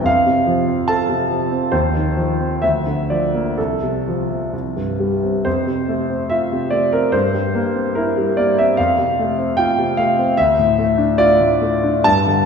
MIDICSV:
0, 0, Header, 1, 2, 480
1, 0, Start_track
1, 0, Key_signature, -1, "major"
1, 0, Tempo, 829876
1, 33, Time_signature, 2, 2, 24, 8
1, 994, Tempo, 898204
1, 1474, Tempo, 946372
1, 2914, Tempo, 834492
1, 4354, Tempo, 805369
1, 6274, Tempo, 862069
1, 6984, End_track
2, 0, Start_track
2, 0, Title_t, "Grand piano"
2, 0, Program_c, 0, 0
2, 0, Control_c, 0, 64, 127
2, 20, Note_on_c, 0, 41, 46
2, 33, Note_on_c, 0, 77, 75
2, 42, Control_c, 0, 64, 0
2, 147, Control_c, 0, 64, 127
2, 151, Note_on_c, 0, 48, 30
2, 271, Note_on_c, 0, 53, 37
2, 339, Note_off_c, 0, 48, 0
2, 392, Note_on_c, 0, 60, 32
2, 459, Note_off_c, 0, 53, 0
2, 506, Note_off_c, 0, 77, 0
2, 507, Note_on_c, 0, 81, 65
2, 511, Note_on_c, 0, 69, 40
2, 581, Note_off_c, 0, 60, 0
2, 631, Note_on_c, 0, 48, 31
2, 702, Note_off_c, 0, 69, 0
2, 751, Note_on_c, 0, 53, 30
2, 823, Note_off_c, 0, 48, 0
2, 874, Note_on_c, 0, 60, 35
2, 946, Note_off_c, 0, 53, 0
2, 964, Note_off_c, 0, 41, 0
2, 992, Note_on_c, 0, 72, 60
2, 995, Note_off_c, 0, 81, 0
2, 995, Note_on_c, 0, 39, 43
2, 996, Note_off_c, 0, 60, 0
2, 1005, Control_c, 0, 64, 0
2, 1102, Control_c, 0, 64, 127
2, 1109, Note_on_c, 0, 51, 28
2, 1235, Note_on_c, 0, 53, 31
2, 1300, Note_off_c, 0, 51, 0
2, 1357, Note_on_c, 0, 60, 30
2, 1427, Note_off_c, 0, 53, 0
2, 1460, Note_off_c, 0, 39, 0
2, 1473, Note_off_c, 0, 72, 0
2, 1474, Note_on_c, 0, 76, 59
2, 1477, Note_off_c, 0, 60, 0
2, 1480, Note_on_c, 0, 38, 37
2, 1483, Control_c, 0, 64, 0
2, 1579, Control_c, 0, 64, 127
2, 1600, Note_on_c, 0, 50, 28
2, 1715, Note_off_c, 0, 76, 0
2, 1719, Note_on_c, 0, 74, 45
2, 1722, Note_on_c, 0, 53, 29
2, 1791, Note_off_c, 0, 50, 0
2, 1842, Note_on_c, 0, 58, 28
2, 1914, Note_off_c, 0, 53, 0
2, 1948, Note_off_c, 0, 38, 0
2, 1960, Note_on_c, 0, 69, 46
2, 1962, Note_off_c, 0, 58, 0
2, 1962, Note_off_c, 0, 74, 0
2, 1966, Note_on_c, 0, 36, 36
2, 1970, Control_c, 0, 64, 0
2, 2056, Control_c, 0, 64, 127
2, 2088, Note_on_c, 0, 48, 24
2, 2214, Note_on_c, 0, 53, 28
2, 2278, Note_off_c, 0, 48, 0
2, 2325, Note_on_c, 0, 60, 25
2, 2400, Note_off_c, 0, 53, 0
2, 2431, Note_off_c, 0, 36, 0
2, 2443, Note_off_c, 0, 69, 0
2, 2444, Note_off_c, 0, 60, 0
2, 2444, Note_on_c, 0, 36, 34
2, 2453, Control_c, 0, 64, 0
2, 2556, Control_c, 0, 64, 127
2, 2564, Note_on_c, 0, 43, 22
2, 2682, Note_on_c, 0, 55, 25
2, 2756, Note_off_c, 0, 43, 0
2, 2799, Note_on_c, 0, 60, 27
2, 2870, Note_off_c, 0, 55, 0
2, 2901, Note_off_c, 0, 36, 0
2, 2909, Note_on_c, 0, 72, 56
2, 2912, Note_on_c, 0, 41, 36
2, 2913, Note_off_c, 0, 60, 0
2, 2927, Control_c, 0, 64, 0
2, 3031, Control_c, 0, 64, 127
2, 3036, Note_on_c, 0, 48, 27
2, 3160, Note_on_c, 0, 57, 33
2, 3234, Note_off_c, 0, 48, 0
2, 3284, Note_on_c, 0, 60, 29
2, 3355, Note_off_c, 0, 57, 0
2, 3397, Note_on_c, 0, 76, 62
2, 3400, Note_off_c, 0, 72, 0
2, 3403, Note_on_c, 0, 65, 33
2, 3476, Note_off_c, 0, 60, 0
2, 3527, Note_on_c, 0, 48, 27
2, 3594, Note_off_c, 0, 65, 0
2, 3632, Note_on_c, 0, 74, 52
2, 3639, Note_off_c, 0, 76, 0
2, 3640, Note_on_c, 0, 57, 32
2, 3715, Note_off_c, 0, 48, 0
2, 3756, Note_off_c, 0, 74, 0
2, 3760, Note_on_c, 0, 60, 33
2, 3760, Note_on_c, 0, 70, 54
2, 3830, Note_off_c, 0, 57, 0
2, 3854, Note_off_c, 0, 41, 0
2, 3872, Note_on_c, 0, 72, 64
2, 3877, Note_on_c, 0, 43, 44
2, 3878, Note_off_c, 0, 60, 0
2, 3879, Note_off_c, 0, 70, 0
2, 3888, Control_c, 0, 64, 0
2, 3986, Control_c, 0, 64, 127
2, 3996, Note_on_c, 0, 55, 29
2, 4118, Note_on_c, 0, 58, 35
2, 4187, Note_off_c, 0, 55, 0
2, 4234, Note_on_c, 0, 60, 33
2, 4308, Note_off_c, 0, 58, 0
2, 4350, Note_on_c, 0, 70, 55
2, 4351, Note_off_c, 0, 72, 0
2, 4354, Note_on_c, 0, 64, 35
2, 4428, Note_off_c, 0, 60, 0
2, 4482, Note_on_c, 0, 55, 29
2, 4550, Note_off_c, 0, 64, 0
2, 4596, Note_off_c, 0, 70, 0
2, 4598, Note_on_c, 0, 74, 57
2, 4603, Note_on_c, 0, 58, 35
2, 4673, Note_off_c, 0, 55, 0
2, 4719, Note_off_c, 0, 74, 0
2, 4726, Note_on_c, 0, 76, 64
2, 4730, Note_on_c, 0, 60, 39
2, 4794, Note_off_c, 0, 58, 0
2, 4816, Note_off_c, 0, 43, 0
2, 4839, Note_on_c, 0, 77, 71
2, 4844, Note_off_c, 0, 76, 0
2, 4845, Note_on_c, 0, 41, 44
2, 4846, Note_off_c, 0, 60, 0
2, 4851, Control_c, 0, 64, 0
2, 4935, Control_c, 0, 64, 127
2, 4964, Note_on_c, 0, 48, 33
2, 5089, Note_on_c, 0, 57, 40
2, 5155, Note_off_c, 0, 48, 0
2, 5203, Note_on_c, 0, 60, 36
2, 5277, Note_off_c, 0, 57, 0
2, 5313, Note_on_c, 0, 79, 70
2, 5319, Note_off_c, 0, 77, 0
2, 5320, Note_on_c, 0, 65, 40
2, 5392, Note_off_c, 0, 60, 0
2, 5440, Note_on_c, 0, 48, 33
2, 5510, Note_off_c, 0, 65, 0
2, 5554, Note_off_c, 0, 79, 0
2, 5554, Note_on_c, 0, 77, 68
2, 5557, Note_on_c, 0, 57, 36
2, 5630, Note_off_c, 0, 48, 0
2, 5680, Note_on_c, 0, 60, 38
2, 5748, Note_off_c, 0, 57, 0
2, 5775, Note_off_c, 0, 41, 0
2, 5793, Note_on_c, 0, 76, 77
2, 5795, Note_off_c, 0, 77, 0
2, 5798, Note_off_c, 0, 60, 0
2, 5799, Note_on_c, 0, 38, 47
2, 5807, Control_c, 0, 64, 0
2, 5884, Control_c, 0, 64, 127
2, 5922, Note_on_c, 0, 45, 34
2, 6037, Note_on_c, 0, 57, 42
2, 6109, Note_off_c, 0, 45, 0
2, 6153, Note_on_c, 0, 62, 40
2, 6227, Note_off_c, 0, 57, 0
2, 6272, Note_off_c, 0, 76, 0
2, 6274, Note_on_c, 0, 74, 75
2, 6279, Note_on_c, 0, 65, 42
2, 6343, Note_off_c, 0, 62, 0
2, 6398, Note_on_c, 0, 45, 35
2, 6465, Note_off_c, 0, 65, 0
2, 6513, Note_on_c, 0, 57, 43
2, 6591, Note_off_c, 0, 45, 0
2, 6638, Note_on_c, 0, 62, 40
2, 6710, Note_off_c, 0, 57, 0
2, 6736, Note_off_c, 0, 38, 0
2, 6754, Note_on_c, 0, 81, 93
2, 6756, Note_on_c, 0, 43, 48
2, 6758, Note_off_c, 0, 62, 0
2, 6758, Note_off_c, 0, 74, 0
2, 6767, Control_c, 0, 64, 0
2, 6854, Control_c, 0, 64, 127
2, 6876, Note_on_c, 0, 50, 36
2, 6984, Note_off_c, 0, 43, 0
2, 6984, Note_off_c, 0, 50, 0
2, 6984, Note_off_c, 0, 81, 0
2, 6984, End_track
0, 0, End_of_file